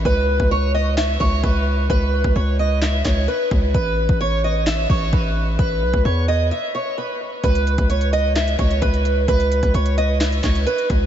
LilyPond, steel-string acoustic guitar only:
\new Staff \with { instrumentName = "Steel-string acoustic guitar" } { \time 4/4 \key cis \minor \tempo 4 = 130 b'4 cis''8 dis''8 e''8 cis''8 b'4 | b'4 cis''8 dis''8 e''8 cis''8 b'8 r8 | b'4 cis''8 dis''8 e''8 cis''8 b'4 | b'4 cis''8 dis''8 e''8 cis''8 b'8 r8 |
b'4 cis''8 dis''8 e''8 cis''8 b'4 | b'4 cis''8 dis''8 e''8 cis''8 b'8 r8 | }